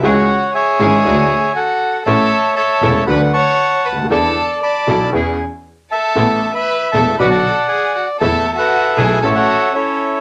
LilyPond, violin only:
\new Staff \with { instrumentName = "Violin" } { \time 4/4 \key a \major \tempo 4 = 118 fis'4 gis'2 fis'4 | a'4 a'4 b'8 cis''4 b'8 | a'4 d''4 r4. a'8~ | a'8. b'8. a'8 b'16 a'8. gis'8 fis'8 |
a'8. fis'8. gis'8 a'16 fis'8. cis'4 | }